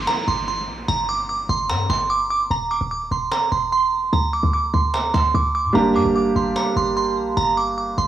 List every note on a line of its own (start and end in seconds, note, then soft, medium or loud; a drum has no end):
0.00 downlifter medium
0.07 0.24 A#5 loud
0.07 cajon slap loud
0.17 cajon slap soft
0.28 0.70 G1 loud
0.28 0.44 C6 medium
0.28 cajon slap soft
0.38 cajon slap soft
0.48 0.86 C6 medium
0.48 cajon slap soft
0.68 0.87 A#1 loud
0.68 cajon slap soft
0.78 cajon slap soft
0.88 1.47 G1 loud
0.88 1.05 A#5 loud
0.88 cajon slap soft
0.99 cajon slap soft
1.09 1.25 D6 medium
1.09 cajon slap soft
1.19 cajon slap soft
1.29 1.46 D6 medium
1.29 cajon slap soft
1.39 cajon slap soft
1.49 1.71 G1 loud
1.49 1.66 C6 medium
1.49 cajon slap soft
1.69 1.89 G2 loud
1.69 1.86 A#5 medium
1.69 cajon slap loud
1.79 cajon slap soft
1.90 2.48 G1 loud
1.90 2.06 C6 medium
1.90 cajon slap loud
2.00 cajon slap soft
2.10 2.27 D6 medium
2.10 cajon slap soft
2.30 2.47 D6 medium
2.30 cajon slap soft
2.40 cajon slap soft
2.51 2.80 D#1 loud
2.51 2.67 A#5 loud
2.51 cajon slap soft
2.61 cajon slap soft
2.71 2.88 D6 medium
2.71 cajon slap soft
2.81 3.10 D#1 loud
2.81 cajon slap soft
2.91 3.08 D6 medium
2.91 cajon slap soft
3.01 cajon slap soft
3.11 3.31 D#1 loud
3.11 3.28 C6 medium
3.11 cajon slap soft
3.32 3.48 A#5 medium
3.32 cajon slap loud
3.42 cajon slap soft
3.52 4.10 D#1 loud
3.52 3.69 C6 medium
3.52 cajon slap soft
3.62 cajon slap soft
3.72 4.10 C6 medium
3.72 cajon slap soft
3.93 cajon slap soft
4.02 cajon slap soft
4.13 4.42 D2 loud
4.13 4.30 A#5 loud
4.13 cajon slap soft
4.23 cajon slap soft
4.33 4.50 D6 medium
4.33 cajon slap soft
4.43 4.72 D2 loud
4.43 cajon slap soft
4.53 4.70 D6 medium
4.53 cajon slap soft
4.64 cajon slap soft
4.74 5.13 D2 loud
4.74 4.90 C6 medium
4.74 cajon slap soft
4.80 cajon slap soft
4.87 cajon slap soft
4.94 5.11 A#5 medium
4.94 cajon slap loud
5.04 cajon slap soft
5.14 5.34 D2 loud
5.14 5.31 C6 medium
5.14 cajon slap loud
5.24 cajon slap soft
5.34 5.66 D2 loud
5.34 5.51 D6 medium
5.34 cajon slap medium
5.55 5.71 D6 medium
5.55 cajon slap soft
5.65 5.74 A2 loud
5.65 cajon slap soft
5.73 5.97 G1 loud
5.73 8.07 G3 medium
5.73 8.07 A#3 medium
5.73 8.07 D4 medium
5.73 5.92 A#5 loud
5.73 cajon slap soft
5.77 8.07 G4 medium
5.85 cajon slap soft
5.95 6.05 G2 loud
5.95 6.12 D6 medium
5.95 cajon slap soft
6.05 6.35 G1 loud
6.05 cajon slap soft
6.15 6.32 D6 medium
6.15 cajon slap soft
6.26 cajon slap soft
6.36 6.55 G1 loud
6.36 6.53 C6 medium
6.36 cajon slap soft
6.56 6.73 A#5 loud
6.56 cajon slap loud
6.66 cajon slap soft
6.76 7.18 G1 loud
6.76 6.93 C6 medium
6.76 cajon slap soft
6.87 cajon slap soft
6.97 7.35 C6 medium
6.97 cajon slap soft
7.17 7.36 A#1 loud
7.17 cajon slap soft
7.27 cajon slap soft
7.37 7.95 G1 loud
7.37 7.54 A#5 loud
7.37 cajon slap soft
7.47 cajon slap soft
7.57 7.74 D6 medium
7.57 cajon slap soft
7.67 cajon slap soft
7.78 7.94 D6 medium
7.78 cajon slap soft
7.88 cajon slap soft
7.98 8.07 G1 loud
7.98 8.07 C6 medium
7.98 cajon slap soft